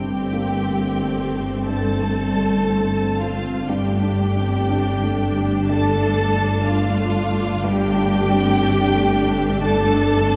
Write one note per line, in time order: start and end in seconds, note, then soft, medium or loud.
0.00 3.66 G1 soft
0.00 1.64 G2 soft
0.00 3.66 G2 soft
0.00 3.65 A3 soft
0.00 0.52 C4 soft
0.00 3.66 C4 soft
0.00 1.64 G4 medium
0.00 1.63 G5 medium
0.33 0.67 A#3 soft
0.66 1.20 C4 soft
1.01 1.55 A3 soft
1.36 1.89 C4 soft
1.68 3.66 G2 soft
1.68 3.20 A4 medium
1.68 3.17 A5 medium
2.02 2.56 A3 soft
2.35 2.69 G3 soft
2.69 3.23 C4 soft
3.03 3.56 A3 soft
3.19 3.69 F4 medium
3.19 3.69 F5 medium
3.36 3.70 C4 soft
3.68 7.61 G1 soft
3.68 5.66 G2 soft
3.68 7.61 G2 medium
3.68 7.60 A3 soft
3.68 7.60 D4 soft
3.68 5.70 G4 medium
3.68 5.69 G5 medium
4.03 4.56 D4 soft
4.37 4.70 C4 soft
4.70 5.24 D4 soft
5.04 5.57 A3 soft
5.37 5.89 D4 soft
5.68 7.60 G2 soft
5.68 6.67 A4 medium
5.68 6.65 A5 medium
6.03 6.54 A3 soft
6.35 6.67 G3 soft
6.67 7.19 D4 soft
6.67 7.62 F4 medium
6.67 7.64 F5 medium
7.00 7.52 A3 soft
7.32 7.64 D4 soft
7.63 10.36 G1 medium
7.63 10.36 G2 medium
7.63 9.57 G2 medium
7.63 10.36 A3 medium
7.63 10.36 D4 medium
7.63 9.62 G4 medium
7.63 9.62 G5 medium
7.97 8.49 D4 soft
8.29 8.62 C4 soft
8.63 9.15 D4 medium
8.95 9.48 A3 soft
9.27 9.81 D4 soft
9.62 10.15 D3 soft
9.62 10.36 A4 medium
9.62 10.36 A5 medium
9.94 10.36 D4 soft
10.27 10.36 C4 soft